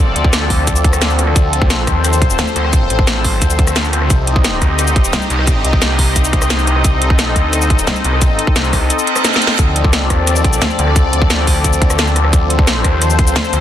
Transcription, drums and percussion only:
0.16 closed hi-hat
0.24 kick
0.33 snare, closed hi-hat, shaker
0.50 kick, open hi-hat, shaker
0.67 kick, closed hi-hat, shaker
0.76 shaker
0.84 kick, closed hi-hat
0.93 cross-stick, shaker
1.02 snare, closed hi-hat, shaker
1.10 shaker
1.19 cross-stick, closed hi-hat, shaker
1.27 cross-stick
1.36 kick, closed hi-hat, shaker
1.53 closed hi-hat
1.62 kick
1.70 snare, closed hi-hat, shaker
1.87 kick, cross-stick, closed hi-hat, shaker
2.04 cross-stick, closed hi-hat, shaker
2.13 shaker
2.22 kick, closed hi-hat
2.30 shaker
2.39 snare, closed hi-hat, shaker
2.47 shaker
2.56 closed hi-hat, shaker
2.64 cross-stick
2.73 kick, closed hi-hat, shaker
2.90 closed hi-hat
2.99 kick
3.07 snare, closed hi-hat, shaker
3.24 kick, open hi-hat, shaker
3.42 kick, closed hi-hat, shaker
3.50 shaker
3.59 kick, closed hi-hat
3.67 cross-stick, shaker
3.76 snare, closed hi-hat, shaker
3.84 shaker
3.93 cross-stick, closed hi-hat, shaker
4.02 cross-stick
4.10 kick, closed hi-hat, shaker
4.27 closed hi-hat
4.36 kick
4.45 snare, closed hi-hat, shaker
4.62 kick, cross-stick, closed hi-hat, shaker
4.79 cross-stick, closed hi-hat, shaker
4.87 shaker
4.96 kick, closed hi-hat
5.05 shaker
5.13 snare, closed hi-hat, shaker
5.22 shaker
5.30 closed hi-hat, shaker
5.39 cross-stick
5.47 kick, closed hi-hat, shaker
5.65 closed hi-hat
5.73 kick
5.82 snare, closed hi-hat, shaker
5.99 kick, open hi-hat, shaker
6.16 kick, closed hi-hat, shaker
6.25 shaker
6.33 kick, closed hi-hat
6.42 cross-stick, shaker
6.50 snare, closed hi-hat, shaker
6.59 shaker
6.67 cross-stick, closed hi-hat, shaker
6.76 cross-stick
6.84 kick, closed hi-hat, shaker
7.02 closed hi-hat
7.10 kick
7.19 snare, closed hi-hat, shaker
7.36 kick, closed hi-hat, shaker
7.53 cross-stick, closed hi-hat, shaker
7.62 shaker
7.70 kick, closed hi-hat
7.79 shaker
7.87 snare, closed hi-hat, shaker
7.96 shaker
8.04 closed hi-hat, shaker
8.13 cross-stick
8.22 kick, closed hi-hat, shaker
8.39 closed hi-hat
8.47 kick
8.56 snare, closed hi-hat, shaker
8.64 shaker
8.73 kick, cross-stick, open hi-hat, shaker
8.90 closed hi-hat, shaker
8.99 shaker
9.07 closed hi-hat
9.16 cross-stick, shaker
9.25 snare, closed hi-hat, shaker
9.33 snare, shaker
9.42 closed hi-hat, shaker
9.47 snare
9.59 kick, closed hi-hat, shaker
9.76 closed hi-hat
9.84 kick
9.93 snare, closed hi-hat, shaker
10.10 kick, cross-stick, closed hi-hat, shaker
10.27 cross-stick, closed hi-hat, shaker
10.36 shaker
10.44 kick, closed hi-hat
10.53 shaker
10.62 snare, closed hi-hat, shaker
10.70 shaker
10.79 closed hi-hat, shaker
10.87 cross-stick
10.96 kick, closed hi-hat, shaker
11.13 closed hi-hat
11.22 kick
11.30 snare, closed hi-hat, shaker
11.47 kick, open hi-hat, shaker
11.64 kick, closed hi-hat, shaker
11.73 shaker
11.82 kick, closed hi-hat
11.90 cross-stick, shaker
11.99 snare, closed hi-hat, shaker
12.07 shaker
12.16 cross-stick, closed hi-hat, shaker
12.24 cross-stick
12.33 kick, closed hi-hat, shaker
12.50 closed hi-hat
12.59 kick
12.67 snare, closed hi-hat, shaker
12.84 kick, cross-stick, closed hi-hat, shaker
13.02 cross-stick, closed hi-hat, shaker
13.10 shaker
13.19 kick, closed hi-hat
13.27 shaker
13.36 snare, closed hi-hat, shaker
13.44 shaker
13.53 closed hi-hat, shaker

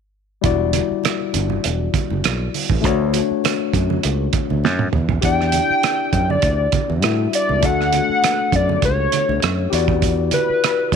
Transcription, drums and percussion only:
0.44 kick, closed hi-hat, muted conga
0.73 closed hi-hat, muted conga, high conga
1.03 cross-stick, closed hi-hat, muted conga
1.34 closed hi-hat, muted conga, low conga
1.50 high conga
1.64 closed hi-hat
1.94 kick, closed hi-hat, muted conga, high conga
2.10 high conga
2.24 cross-stick, closed hi-hat
2.54 open hi-hat, high conga
2.70 kick, low conga
2.84 kick, closed hi-hat, muted conga
3.13 closed hi-hat, high conga
3.44 cross-stick, closed hi-hat, muted conga
3.74 kick, closed hi-hat, low conga
3.90 high conga
4.03 closed hi-hat, muted conga
4.33 kick, closed hi-hat, muted conga, high conga
4.50 high conga
4.64 snare, muted conga
4.79 high tom
4.93 mid tom, muted conga, high conga
5.09 floor tom, low conga
5.22 kick, closed hi-hat, muted conga
5.41 cross-stick
5.52 closed hi-hat, high conga
5.83 cross-stick, closed hi-hat
6.13 kick, closed hi-hat, muted conga, low conga
6.30 high conga
6.42 kick, closed hi-hat
6.72 kick, closed hi-hat, muted conga, high conga
6.90 high conga
7.02 cross-stick, closed hi-hat, muted conga
7.33 closed hi-hat
7.49 low conga
7.63 kick, closed hi-hat, muted conga
7.81 cross-stick
7.92 closed hi-hat, high conga
8.23 cross-stick, closed hi-hat, muted conga
8.52 kick, closed hi-hat, muted conga, low conga
8.69 high conga
8.82 kick, closed hi-hat
9.12 closed hi-hat, muted conga, high conga
9.29 high conga
9.42 cross-stick, closed hi-hat, muted conga
9.73 closed hi-hat
9.88 kick, low conga
10.02 kick, closed hi-hat, muted conga
10.31 closed hi-hat, muted conga, high conga
10.64 cross-stick, closed hi-hat
10.92 kick, closed hi-hat

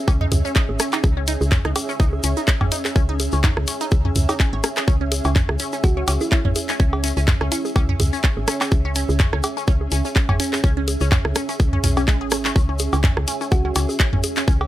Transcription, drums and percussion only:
0.08 kick, cowbell, shaker
0.21 mid tom
0.32 closed hi-hat, mid tom, low bongo, shaker
0.45 shaker
0.56 kick, clap, shaker
0.69 low bongo
0.80 cross-stick, closed hi-hat, shaker
0.92 clap, cowbell, shaker
1.04 kick, low bongo, shaker
1.27 closed hi-hat, shaker
1.41 low bongo, shaker
1.52 kick, clap, mid tom, shaker
1.65 cross-stick
1.76 closed hi-hat, cowbell, low bongo, shaker
1.89 shaker
2.00 kick, shaker
2.13 low bongo
2.24 closed hi-hat, shaker
2.37 shaker
2.48 kick, clap, low bongo, shaker
2.61 mid tom, cowbell
2.72 closed hi-hat, shaker
2.85 clap, low bongo, shaker
2.96 kick, shaker
3.20 closed hi-hat, low bongo, shaker
3.32 shaker
3.44 kick, clap, closed hi-hat, mid tom, cowbell, shaker
3.57 cross-stick, low bongo
3.67 closed hi-hat, shaker
3.81 closed hi-hat, shaker
3.91 kick, low bongo, shaker
4.05 mid tom
4.16 closed hi-hat, mid tom, shaker
4.29 cowbell, low bongo, shaker
4.40 kick, clap, shaker
4.64 cross-stick, closed hi-hat, low bongo, shaker
4.76 clap, shaker
4.88 kick, shaker
5.12 closed hi-hat, low bongo, shaker
5.24 cowbell, shaker
5.36 kick, clap, mid tom, shaker
5.49 cross-stick, low bongo
5.59 closed hi-hat, shaker
5.73 shaker
5.84 kick, low bongo, shaker
6.08 closed hi-hat, cowbell, shaker
6.21 low bongo, shaker
6.32 kick, clap, shaker
6.45 mid tom
6.56 closed hi-hat, low bongo, shaker
6.69 clap, shaker
6.80 kick, shaker
6.93 cowbell, low bongo
7.04 closed hi-hat, shaker
7.17 shaker
7.28 kick, clap, mid tom, low bongo, shaker
7.41 cross-stick
7.52 closed hi-hat, shaker
7.65 low bongo, shaker
7.76 kick, cowbell, shaker
7.89 mid tom
8.00 closed hi-hat, mid tom, low bongo, shaker
8.13 shaker
8.23 kick, clap, shaker
8.37 low bongo
8.48 cross-stick, closed hi-hat, shaker
8.61 clap, cowbell, shaker
8.71 kick, low bongo, shaker
8.95 closed hi-hat, shaker
9.09 low bongo, shaker
9.20 kick, clap, mid tom, shaker
9.33 cross-stick
9.43 closed hi-hat, cowbell, low bongo, shaker
9.57 shaker
9.68 kick, shaker
9.81 low bongo
9.92 closed hi-hat, shaker
10.05 shaker
10.16 kick, clap, low bongo, shaker
10.29 mid tom, cowbell
10.40 closed hi-hat, shaker
10.53 clap, low bongo, shaker
10.64 kick, shaker
10.88 closed hi-hat, low bongo, shaker
11.01 shaker
11.12 kick, clap, mid tom, cowbell, shaker
11.25 cross-stick, low bongo
11.35 cross-stick, closed hi-hat, shaker
11.49 closed hi-hat, shaker
11.60 kick, low bongo, shaker
11.73 mid tom
11.84 closed hi-hat, mid tom, shaker
11.97 cowbell, low bongo, shaker
12.08 kick, clap, shaker
12.31 cross-stick, closed hi-hat, low bongo, shaker
12.45 clap, shaker
12.56 kick, shaker
12.79 closed hi-hat, low bongo, shaker
12.93 cowbell, shaker
13.04 kick, clap, mid tom, shaker
13.17 cross-stick, low bongo
13.28 closed hi-hat, shaker
13.41 shaker
13.52 kick, low bongo, shaker
13.76 closed hi-hat, cowbell, shaker
13.89 low bongo, shaker
14.00 kick, clap, shaker
14.13 mid tom
14.24 closed hi-hat, low bongo, shaker
14.36 clap, shaker
14.48 kick, shaker
14.61 cowbell, low bongo

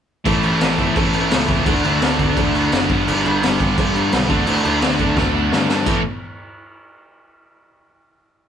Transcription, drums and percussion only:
0.26 kick, crash
0.43 crash
0.61 snare, crash
0.78 kick, crash
0.96 kick, crash
1.13 crash
1.31 snare, crash
1.48 kick, crash
1.66 kick, crash
1.84 crash
2.02 snare, crash
2.19 kick, crash
2.37 kick, crash
2.55 crash
2.72 snare, crash
2.89 kick, crash
3.08 crash
3.25 crash
3.43 snare, crash
3.60 kick, crash
3.78 kick, crash
3.96 crash
4.12 snare, crash
4.29 kick, crash
4.47 crash
4.65 crash
4.82 snare, crash
4.99 kick, crash
5.17 kick, snare
5.52 snare
5.69 snare
5.86 kick, crash

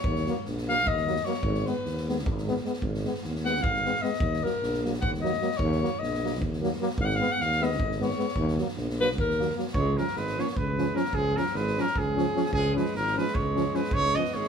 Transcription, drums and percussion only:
0.04 kick
0.15 snare
0.26 snare
0.45 snare
0.57 snare
0.68 snare
0.77 snare
0.87 kick
0.97 snare
1.07 snare
1.16 snare
1.25 snare
1.33 snare
1.43 kick
1.54 snare
1.66 snare
1.85 snare
1.97 snare
2.09 snare
2.18 snare
2.26 kick
2.37 snare
2.47 snare
2.56 snare
2.65 snare
2.73 snare
2.82 kick
2.94 snare
3.05 snare
3.14 snare
3.23 snare
3.35 snare
3.45 snare
3.55 snare
3.64 kick
3.74 snare
3.85 snare
3.94 snare
4.03 snare
4.13 snare
4.20 kick
4.33 snare
4.45 snare
4.63 snare
4.73 snare
4.85 snare
4.94 snare
5.03 kick
5.14 snare
5.25 snare
5.33 snare
5.41 snare
5.51 snare
5.59 kick
5.71 snare
5.84 snare
6.03 snare
6.14 snare
6.26 snare
6.34 snare
6.42 kick
6.53 snare
6.63 snare
6.72 snare
6.82 snare
6.90 snare
6.98 kick
7.10 snare
7.22 snare
7.40 snare
7.51 snare
7.62 snare
7.71 snare
7.80 kick
7.91 snare
8.01 snare
8.10 snare
8.19 snare
8.28 snare
8.36 kick
8.47 snare
8.58 snare
8.68 snare
8.77 snare
8.90 snare
9.01 snare
9.10 snare
9.18 kick
9.30 snare
9.40 snare
9.49 snare
9.58 snare
9.67 snare
9.74 kick
9.97 snare
10.07 snare
10.16 snare
10.27 snare
10.38 snare
10.47 snare
10.57 kick
10.78 snare
10.96 snare
11.04 snare
11.13 kick
11.37 snare
11.46 snare
11.55 snare
11.67 snare
11.77 snare
11.87 snare
11.96 kick
12.18 snare
12.36 snare
12.45 snare
12.53 kick
12.77 snare
12.85 snare
12.95 snare
13.07 snare
13.18 snare
13.27 snare
13.35 kick
13.56 snare
13.74 snare
13.83 snare
13.91 kick
14.03 snare
14.14 snare
14.24 snare
14.32 snare
14.44 snare

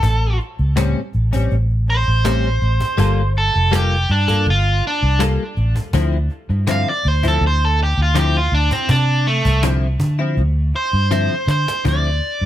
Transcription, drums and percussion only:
0.03 cajon bass
0.40 cajon slap
0.59 cajon slap
0.77 cajon slap
1.13 cajon slap
1.33 cajon bass
1.51 cajon slap
1.70 cajon slap
1.88 cajon slap
2.25 cajon slap
2.61 cajon slap
2.81 cajon bass
2.98 cajon bass
3.36 cajon slap
3.73 cajon slap
4.09 cajon slap
4.28 cajon bass
4.46 cajon slap
4.83 cajon slap
5.20 cajon slap
5.57 cajon slap
5.76 cajon bass
5.93 cajon bass
6.30 cajon slap
6.50 cajon slap
6.67 cajon slap
7.04 cajon slap
7.23 cajon bass
7.41 cajon slap
7.60 cajon slap
7.78 cajon slap
8.15 cajon slap
8.52 cajon slap
8.71 cajon bass, cajon slap
8.89 cajon bass
9.26 cajon slap
9.45 cajon bass
9.63 cajon slap
10.00 cajon bass
10.37 cajon slap
10.74 cajon slap
11.11 cajon slap
11.48 cajon slap
11.68 cajon slap
11.85 cajon bass
12.23 cajon slap

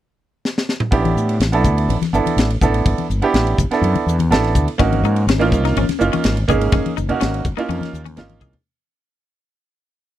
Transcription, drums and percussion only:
0.45 snare
0.58 snare
0.69 snare
0.80 mid tom
0.92 kick, ride
1.05 ride, high conga
1.17 hi-hat pedal
1.29 ride
1.40 snare, ride
1.53 ride
1.64 kick, hi-hat pedal, low conga
1.78 ride
1.89 ride, high conga
2.02 snare, ride, high conga
2.14 hi-hat pedal
2.26 ride, high conga
2.38 snare, ride
2.50 ride
2.61 kick, hi-hat pedal, low conga
2.74 ride
2.86 kick, ride
2.98 ride, high conga
3.10 hi-hat pedal
3.22 ride
3.34 snare, ride
3.47 ride
3.58 kick, hi-hat pedal, low conga
3.71 snare, ride
3.83 ride, high conga
3.95 ride, high conga
4.08 hi-hat pedal
4.19 ride, high conga
4.32 snare, ride
4.44 snare, ride
4.55 kick, hi-hat pedal, low conga
4.68 ride
4.79 kick, ride
4.92 ride, high conga
5.04 hi-hat pedal
5.16 ride
5.29 snare, ride
5.41 ride
5.52 kick, hi-hat pedal, low conga
5.65 snare, ride
5.77 ride, high conga
5.89 snare, ride, high conga
6.00 hi-hat pedal
6.13 ride, high conga
6.24 snare, ride
6.37 ride
6.49 kick, hi-hat pedal, low conga
6.61 ride
6.72 kick, ride
6.86 ride, high conga
6.97 hi-hat pedal
7.09 ride, low conga
7.21 snare, ride
7.34 ride
7.45 kick, hi-hat pedal, low conga
7.58 ride
7.69 ride, high conga
7.81 snare, ride, high conga
7.94 hi-hat pedal
8.06 ride, high conga
8.17 snare, ride, high conga
8.29 ride, high conga
8.41 kick, hi-hat pedal, low conga
8.53 ride, low conga

